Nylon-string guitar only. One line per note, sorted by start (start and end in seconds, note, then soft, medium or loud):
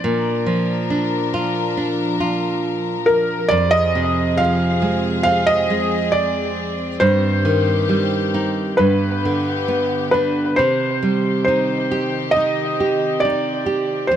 0.04 3.48 A#2 medium
0.46 2.16 F3 soft
0.90 1.76 D4 medium
1.34 2.19 F4 medium
1.77 3.48 D4 medium
2.20 3.47 F4 soft
3.51 6.97 F2 medium
3.95 5.65 C3 soft
4.39 6.09 F3 soft
4.82 5.69 G#3 medium
5.25 6.96 C4 medium
5.70 6.97 G#3 medium
7.01 8.74 G2 medium
7.45 8.74 D#3 soft
7.89 8.75 G3 medium
8.34 8.77 D#4 medium
8.79 10.54 G2 medium
9.25 10.55 D3 soft
9.68 10.55 B3 soft
10.14 10.57 D4 soft
10.59 14.07 C3 medium
11.03 12.76 G3 soft
11.48 12.35 D#4 soft
11.91 12.79 G4 medium
12.36 13.24 D#4 soft
12.80 13.65 G4 soft
13.25 14.09 D#4 soft
13.66 14.09 G4 soft
14.11 14.16 F2 medium